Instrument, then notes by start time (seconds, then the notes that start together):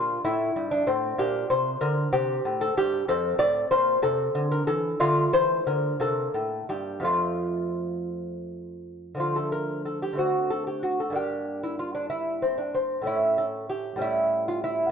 lute
Already playing: A#2 D4 F4
0.25 A2 E4
0.56 G2
0.71 D4
0.87 A2 C4
1.18 A#2 D4 G4
1.50 C3 C5
1.81 D3 A#4
2.12 C3 C4 G4
2.45 A2
2.61 A4
2.77 G2 G4
3.08 F2 C4 A4
3.39 A2 D5
3.71 A#2 C5
4.02 C3 C4 A4
4.35 D3
4.51 A#4
4.67 E3 A4
5.00 D3 A3 F4
5.33 E3 C5
5.67 D3 A#4
6.00 C3 A#3 A4
6.34 A2
6.69 G2 G4
7.00 F2 F3 A3
7.05 F4
9.15 D3 F3 A3
9.20 F4
9.36 A4
9.52 A#4
9.85 A4
10.02 G4
10.13 D3 A3
10.17 C4 F#4
10.50 A4
10.67 G4
10.83 F#4
11.00 A4
11.10 G2 A#3 D4
11.16 G4
11.63 E4
11.79 F4
11.95 D4
12.10 E4
12.42 C4
12.58 D4
12.75 C4
13.02 A2 A3 C#4
13.07 E4
13.38 A4
13.69 G4
13.96 A2 G3 C#4
14.02 E4
14.48 F4
14.64 E4